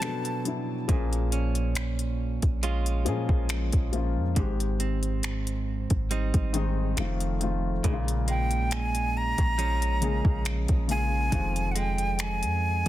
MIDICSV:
0, 0, Header, 1, 6, 480
1, 0, Start_track
1, 0, Tempo, 869565
1, 490, Time_signature, 4, 2, 24, 8
1, 7112, End_track
2, 0, Start_track
2, 0, Title_t, "Flute"
2, 0, Program_c, 0, 73
2, 0, Note_on_c, 0, 81, 102
2, 233, Note_off_c, 0, 81, 0
2, 4580, Note_on_c, 0, 79, 87
2, 4819, Note_on_c, 0, 80, 98
2, 4827, Note_off_c, 0, 79, 0
2, 5063, Note_on_c, 0, 82, 102
2, 5071, Note_off_c, 0, 80, 0
2, 5776, Note_off_c, 0, 82, 0
2, 6022, Note_on_c, 0, 80, 110
2, 6467, Note_on_c, 0, 78, 65
2, 6475, Note_off_c, 0, 80, 0
2, 6502, Note_on_c, 0, 79, 92
2, 6511, Note_off_c, 0, 78, 0
2, 6741, Note_on_c, 0, 80, 101
2, 6749, Note_off_c, 0, 79, 0
2, 7112, Note_off_c, 0, 80, 0
2, 7112, End_track
3, 0, Start_track
3, 0, Title_t, "Grand piano"
3, 0, Program_c, 1, 0
3, 0, Control_c, 1, 64, 127
3, 3, Note_on_c, 1, 54, 75
3, 9, Note_on_c, 1, 59, 64
3, 15, Note_on_c, 1, 62, 66
3, 16, Control_c, 1, 64, 0
3, 20, Note_on_c, 1, 69, 78
3, 103, Control_c, 1, 64, 127
3, 202, Note_off_c, 1, 54, 0
3, 205, Note_off_c, 1, 59, 0
3, 208, Note_off_c, 1, 62, 0
3, 210, Note_off_c, 1, 69, 0
3, 245, Note_on_c, 1, 54, 69
3, 250, Note_on_c, 1, 59, 60
3, 256, Note_on_c, 1, 62, 62
3, 261, Note_on_c, 1, 64, 70
3, 410, Note_off_c, 1, 54, 0
3, 413, Note_off_c, 1, 59, 0
3, 416, Note_off_c, 1, 62, 0
3, 418, Note_off_c, 1, 64, 0
3, 485, Note_on_c, 1, 53, 79
3, 490, Note_on_c, 1, 58, 77
3, 496, Control_c, 1, 64, 0
3, 496, Note_on_c, 1, 61, 77
3, 502, Note_on_c, 1, 68, 94
3, 592, Control_c, 1, 64, 127
3, 1120, Note_off_c, 1, 53, 0
3, 1122, Note_off_c, 1, 58, 0
3, 1126, Note_off_c, 1, 61, 0
3, 1128, Note_off_c, 1, 68, 0
3, 1684, Note_on_c, 1, 53, 83
3, 1690, Note_on_c, 1, 58, 78
3, 1697, Note_on_c, 1, 61, 81
3, 1702, Note_on_c, 1, 68, 96
3, 2005, Note_off_c, 1, 53, 0
3, 2008, Note_off_c, 1, 58, 0
3, 2011, Note_off_c, 1, 61, 0
3, 2014, Note_off_c, 1, 68, 0
3, 2166, Note_on_c, 1, 53, 83
3, 2170, Note_on_c, 1, 58, 72
3, 2176, Note_on_c, 1, 61, 74
3, 2182, Note_on_c, 1, 65, 88
3, 2331, Note_off_c, 1, 53, 0
3, 2333, Note_off_c, 1, 58, 0
3, 2336, Note_off_c, 1, 61, 0
3, 2339, Note_off_c, 1, 65, 0
3, 2406, Note_on_c, 1, 51, 86
3, 2412, Note_on_c, 1, 56, 80
3, 2416, Control_c, 1, 64, 0
3, 2417, Note_on_c, 1, 60, 75
3, 2423, Note_on_c, 1, 67, 90
3, 2524, Control_c, 1, 64, 127
3, 3040, Note_off_c, 1, 51, 0
3, 3044, Note_off_c, 1, 56, 0
3, 3046, Note_off_c, 1, 60, 0
3, 3049, Note_off_c, 1, 67, 0
3, 3605, Note_on_c, 1, 51, 90
3, 3610, Note_on_c, 1, 56, 78
3, 3616, Note_on_c, 1, 60, 80
3, 3623, Note_on_c, 1, 63, 96
3, 3838, Note_off_c, 1, 51, 0
3, 3847, Note_on_c, 1, 51, 94
3, 3850, Note_off_c, 1, 56, 0
3, 3850, Note_off_c, 1, 60, 0
3, 3851, Note_on_c, 1, 57, 82
3, 3856, Note_off_c, 1, 63, 0
3, 3857, Control_c, 1, 64, 0
3, 3858, Note_on_c, 1, 60, 80
3, 3863, Note_on_c, 1, 65, 97
3, 3942, Control_c, 1, 64, 127
3, 4044, Note_off_c, 1, 51, 0
3, 4046, Note_off_c, 1, 57, 0
3, 4049, Note_off_c, 1, 60, 0
3, 4052, Note_off_c, 1, 65, 0
3, 4086, Note_on_c, 1, 51, 82
3, 4091, Note_on_c, 1, 57, 73
3, 4096, Note_on_c, 1, 60, 74
3, 4103, Note_on_c, 1, 65, 89
3, 4251, Note_off_c, 1, 51, 0
3, 4253, Note_off_c, 1, 57, 0
3, 4256, Note_off_c, 1, 60, 0
3, 4259, Note_off_c, 1, 65, 0
3, 4327, Note_on_c, 1, 49, 87
3, 4331, Note_on_c, 1, 56, 78
3, 4337, Control_c, 1, 64, 0
3, 4338, Note_on_c, 1, 58, 80
3, 4343, Note_on_c, 1, 63, 80
3, 4375, Note_off_c, 1, 63, 0
3, 4379, Note_on_c, 1, 65, 92
3, 4418, Control_c, 1, 64, 127
3, 4961, Note_off_c, 1, 49, 0
3, 4963, Note_off_c, 1, 56, 0
3, 4966, Note_off_c, 1, 58, 0
3, 4987, Note_off_c, 1, 65, 0
3, 5525, Note_on_c, 1, 49, 72
3, 5531, Note_on_c, 1, 56, 65
3, 5536, Note_on_c, 1, 58, 69
3, 5541, Note_on_c, 1, 68, 81
3, 5846, Note_off_c, 1, 49, 0
3, 5848, Note_off_c, 1, 56, 0
3, 5851, Note_off_c, 1, 58, 0
3, 5854, Note_off_c, 1, 68, 0
3, 6005, Note_on_c, 1, 49, 68
3, 6011, Note_on_c, 1, 56, 64
3, 6016, Note_on_c, 1, 58, 66
3, 6022, Note_on_c, 1, 65, 74
3, 6170, Note_off_c, 1, 49, 0
3, 6173, Note_off_c, 1, 56, 0
3, 6176, Note_off_c, 1, 58, 0
3, 6179, Note_off_c, 1, 65, 0
3, 6246, Note_on_c, 1, 51, 69
3, 6252, Note_on_c, 1, 55, 52
3, 6256, Control_c, 1, 64, 0
3, 6257, Note_on_c, 1, 60, 66
3, 6263, Note_on_c, 1, 65, 79
3, 6287, Note_on_c, 1, 56, 62
3, 6289, Note_off_c, 1, 55, 0
3, 6338, Control_c, 1, 64, 127
3, 6881, Note_off_c, 1, 51, 0
3, 6886, Note_off_c, 1, 60, 0
3, 6889, Note_off_c, 1, 65, 0
3, 6901, Note_off_c, 1, 56, 0
3, 7112, End_track
4, 0, Start_track
4, 0, Title_t, "Clean electric guitar"
4, 0, Program_c, 2, 27
4, 0, Note_on_c, 2, 51, 64
4, 0, Note_on_c, 2, 56, 59
4, 0, Note_on_c, 2, 60, 65
4, 9, Note_on_c, 2, 47, 74
4, 61, Note_off_c, 2, 51, 0
4, 62, Note_off_c, 2, 56, 0
4, 64, Note_off_c, 2, 60, 0
4, 487, Note_off_c, 2, 47, 0
4, 489, Note_on_c, 2, 46, 81
4, 732, Note_on_c, 2, 61, 54
4, 1447, Note_off_c, 2, 61, 0
4, 1451, Note_on_c, 2, 56, 60
4, 1454, Note_on_c, 2, 61, 64
4, 1457, Note_on_c, 2, 65, 69
4, 2409, Note_off_c, 2, 46, 0
4, 2410, Note_on_c, 2, 44, 80
4, 2463, Note_off_c, 2, 61, 0
4, 2465, Note_off_c, 2, 65, 0
4, 2648, Note_off_c, 2, 56, 0
4, 2650, Note_on_c, 2, 60, 57
4, 3367, Note_off_c, 2, 60, 0
4, 3371, Note_on_c, 2, 55, 61
4, 3374, Note_on_c, 2, 60, 61
4, 3377, Note_on_c, 2, 63, 66
4, 3847, Note_off_c, 2, 44, 0
4, 3850, Note_on_c, 2, 41, 79
4, 3902, Note_off_c, 2, 55, 0
4, 3903, Note_off_c, 2, 60, 0
4, 3905, Note_off_c, 2, 63, 0
4, 4330, Note_off_c, 2, 41, 0
4, 4330, Note_on_c, 2, 46, 84
4, 4570, Note_on_c, 2, 56, 55
4, 5289, Note_on_c, 2, 53, 62
4, 5290, Note_off_c, 2, 56, 0
4, 5292, Note_on_c, 2, 56, 61
4, 5295, Note_on_c, 2, 61, 66
4, 6249, Note_on_c, 2, 41, 81
4, 6250, Note_off_c, 2, 46, 0
4, 6304, Note_off_c, 2, 61, 0
4, 6486, Note_off_c, 2, 56, 0
4, 6488, Note_on_c, 2, 56, 59
4, 7112, Note_off_c, 2, 41, 0
4, 7112, Note_off_c, 2, 53, 0
4, 7112, Note_off_c, 2, 56, 0
4, 7112, End_track
5, 0, Start_track
5, 0, Title_t, "808-style bass"
5, 0, Program_c, 3, 38
5, 491, Note_on_c, 3, 34, 102
5, 1318, Note_off_c, 3, 34, 0
5, 1341, Note_on_c, 3, 34, 95
5, 1691, Note_on_c, 3, 46, 94
5, 1699, Note_off_c, 3, 34, 0
5, 1813, Note_off_c, 3, 46, 0
5, 1817, Note_on_c, 3, 34, 101
5, 2048, Note_off_c, 3, 34, 0
5, 2062, Note_on_c, 3, 34, 107
5, 2301, Note_on_c, 3, 41, 83
5, 2309, Note_off_c, 3, 34, 0
5, 2405, Note_off_c, 3, 41, 0
5, 2411, Note_on_c, 3, 32, 97
5, 3238, Note_off_c, 3, 32, 0
5, 3261, Note_on_c, 3, 32, 93
5, 3491, Note_off_c, 3, 32, 0
5, 3501, Note_on_c, 3, 32, 92
5, 3837, Note_off_c, 3, 32, 0
5, 3850, Note_on_c, 3, 29, 104
5, 4311, Note_off_c, 3, 29, 0
5, 4330, Note_on_c, 3, 34, 107
5, 5157, Note_off_c, 3, 34, 0
5, 5181, Note_on_c, 3, 34, 93
5, 5641, Note_off_c, 3, 34, 0
5, 5658, Note_on_c, 3, 34, 100
5, 5889, Note_off_c, 3, 34, 0
5, 5902, Note_on_c, 3, 34, 99
5, 6237, Note_off_c, 3, 34, 0
5, 6251, Note_on_c, 3, 29, 99
5, 6863, Note_on_c, 3, 41, 97
5, 6871, Note_off_c, 3, 29, 0
5, 7089, Note_off_c, 3, 41, 0
5, 7112, End_track
6, 0, Start_track
6, 0, Title_t, "Drums"
6, 10, Note_on_c, 9, 42, 66
6, 14, Note_on_c, 9, 26, 97
6, 65, Note_off_c, 9, 42, 0
6, 69, Note_off_c, 9, 26, 0
6, 138, Note_on_c, 9, 42, 49
6, 193, Note_off_c, 9, 42, 0
6, 251, Note_on_c, 9, 42, 56
6, 306, Note_off_c, 9, 42, 0
6, 490, Note_on_c, 9, 36, 94
6, 490, Note_on_c, 9, 42, 77
6, 545, Note_off_c, 9, 36, 0
6, 545, Note_off_c, 9, 42, 0
6, 622, Note_on_c, 9, 42, 47
6, 677, Note_off_c, 9, 42, 0
6, 730, Note_on_c, 9, 42, 70
6, 785, Note_off_c, 9, 42, 0
6, 856, Note_on_c, 9, 42, 39
6, 911, Note_off_c, 9, 42, 0
6, 968, Note_on_c, 9, 42, 67
6, 974, Note_on_c, 9, 26, 110
6, 1023, Note_off_c, 9, 42, 0
6, 1030, Note_off_c, 9, 26, 0
6, 1098, Note_on_c, 9, 42, 48
6, 1154, Note_off_c, 9, 42, 0
6, 1338, Note_on_c, 9, 42, 48
6, 1340, Note_on_c, 9, 36, 87
6, 1393, Note_off_c, 9, 42, 0
6, 1395, Note_off_c, 9, 36, 0
6, 1451, Note_on_c, 9, 42, 66
6, 1507, Note_off_c, 9, 42, 0
6, 1579, Note_on_c, 9, 42, 50
6, 1634, Note_off_c, 9, 42, 0
6, 1689, Note_on_c, 9, 42, 63
6, 1744, Note_off_c, 9, 42, 0
6, 1816, Note_on_c, 9, 36, 102
6, 1871, Note_off_c, 9, 36, 0
6, 1927, Note_on_c, 9, 42, 70
6, 1931, Note_on_c, 9, 26, 97
6, 1982, Note_off_c, 9, 42, 0
6, 1986, Note_off_c, 9, 26, 0
6, 2056, Note_on_c, 9, 42, 52
6, 2061, Note_on_c, 9, 36, 91
6, 2111, Note_off_c, 9, 42, 0
6, 2116, Note_off_c, 9, 36, 0
6, 2169, Note_on_c, 9, 42, 58
6, 2224, Note_off_c, 9, 42, 0
6, 2408, Note_on_c, 9, 42, 76
6, 2409, Note_on_c, 9, 36, 93
6, 2463, Note_off_c, 9, 42, 0
6, 2465, Note_off_c, 9, 36, 0
6, 2540, Note_on_c, 9, 42, 49
6, 2596, Note_off_c, 9, 42, 0
6, 2649, Note_on_c, 9, 42, 70
6, 2704, Note_off_c, 9, 42, 0
6, 2775, Note_on_c, 9, 42, 41
6, 2830, Note_off_c, 9, 42, 0
6, 2888, Note_on_c, 9, 42, 69
6, 2894, Note_on_c, 9, 26, 106
6, 2943, Note_off_c, 9, 42, 0
6, 2949, Note_off_c, 9, 26, 0
6, 3019, Note_on_c, 9, 42, 51
6, 3074, Note_off_c, 9, 42, 0
6, 3258, Note_on_c, 9, 42, 48
6, 3260, Note_on_c, 9, 36, 81
6, 3313, Note_off_c, 9, 42, 0
6, 3315, Note_off_c, 9, 36, 0
6, 3371, Note_on_c, 9, 42, 70
6, 3427, Note_off_c, 9, 42, 0
6, 3499, Note_on_c, 9, 42, 50
6, 3500, Note_on_c, 9, 36, 90
6, 3554, Note_off_c, 9, 42, 0
6, 3555, Note_off_c, 9, 36, 0
6, 3609, Note_on_c, 9, 42, 61
6, 3664, Note_off_c, 9, 42, 0
6, 3848, Note_on_c, 9, 42, 68
6, 3852, Note_on_c, 9, 26, 101
6, 3903, Note_off_c, 9, 42, 0
6, 3907, Note_off_c, 9, 26, 0
6, 3977, Note_on_c, 9, 42, 55
6, 4032, Note_off_c, 9, 42, 0
6, 4090, Note_on_c, 9, 42, 57
6, 4145, Note_off_c, 9, 42, 0
6, 4328, Note_on_c, 9, 42, 71
6, 4329, Note_on_c, 9, 36, 101
6, 4383, Note_off_c, 9, 42, 0
6, 4384, Note_off_c, 9, 36, 0
6, 4461, Note_on_c, 9, 42, 53
6, 4516, Note_off_c, 9, 42, 0
6, 4570, Note_on_c, 9, 42, 71
6, 4625, Note_off_c, 9, 42, 0
6, 4696, Note_on_c, 9, 42, 40
6, 4751, Note_off_c, 9, 42, 0
6, 4808, Note_on_c, 9, 42, 67
6, 4815, Note_on_c, 9, 26, 111
6, 4864, Note_off_c, 9, 42, 0
6, 4870, Note_off_c, 9, 26, 0
6, 4938, Note_on_c, 9, 42, 51
6, 4994, Note_off_c, 9, 42, 0
6, 5178, Note_on_c, 9, 42, 52
6, 5180, Note_on_c, 9, 36, 88
6, 5234, Note_off_c, 9, 42, 0
6, 5236, Note_off_c, 9, 36, 0
6, 5292, Note_on_c, 9, 42, 72
6, 5347, Note_off_c, 9, 42, 0
6, 5421, Note_on_c, 9, 42, 53
6, 5476, Note_off_c, 9, 42, 0
6, 5530, Note_on_c, 9, 42, 66
6, 5586, Note_off_c, 9, 42, 0
6, 5657, Note_on_c, 9, 36, 100
6, 5712, Note_off_c, 9, 36, 0
6, 5770, Note_on_c, 9, 42, 67
6, 5774, Note_on_c, 9, 26, 98
6, 5825, Note_off_c, 9, 42, 0
6, 5829, Note_off_c, 9, 26, 0
6, 5898, Note_on_c, 9, 42, 50
6, 5901, Note_on_c, 9, 36, 89
6, 5953, Note_off_c, 9, 42, 0
6, 5956, Note_off_c, 9, 36, 0
6, 6011, Note_on_c, 9, 42, 59
6, 6066, Note_off_c, 9, 42, 0
6, 6250, Note_on_c, 9, 36, 94
6, 6250, Note_on_c, 9, 42, 74
6, 6305, Note_off_c, 9, 36, 0
6, 6305, Note_off_c, 9, 42, 0
6, 6381, Note_on_c, 9, 42, 49
6, 6436, Note_off_c, 9, 42, 0
6, 6489, Note_on_c, 9, 42, 74
6, 6544, Note_off_c, 9, 42, 0
6, 6615, Note_on_c, 9, 42, 39
6, 6670, Note_off_c, 9, 42, 0
6, 6728, Note_on_c, 9, 42, 69
6, 6734, Note_on_c, 9, 26, 109
6, 6783, Note_off_c, 9, 42, 0
6, 6789, Note_off_c, 9, 26, 0
6, 6859, Note_on_c, 9, 42, 49
6, 6914, Note_off_c, 9, 42, 0
6, 7112, End_track
0, 0, End_of_file